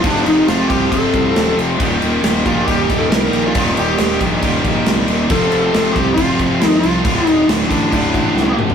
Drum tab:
CC |x-x-x-x-x-x-x-x-|x-x-x-x-x-x-x-x-|x-x-x-x-x-x-x-x-|x-x-x-x-x-x-x-x-|
SD |-o--o-------o---|----o-------o---|-o--o-o-----o---|----o-------o---|
T2 |----------------|----------------|----------------|----------------|
FT |----------------|----------------|----------------|----------------|
BD |o-----o-o-o-----|o-----o-o-o-----|o-----o-o-o-----|o-----o-o-o-----|

CC |x-x-x-x-x-x-----|
SD |----o-------o---|
T2 |--------------o-|
FT |---------------o|
BD |o-----o-o-o-----|